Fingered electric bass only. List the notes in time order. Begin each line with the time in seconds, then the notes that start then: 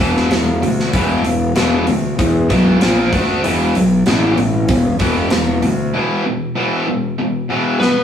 0.00 E1
0.32 E1
0.64 D2
0.94 E1
1.25 E1
1.57 E1
1.88 D2
2.19 E2
2.50 B1
2.82 A#1
3.13 D2
3.44 E1
3.75 B1
4.07 A1
4.37 A1
4.69 E1
5.00 E1
5.31 E1
5.63 D2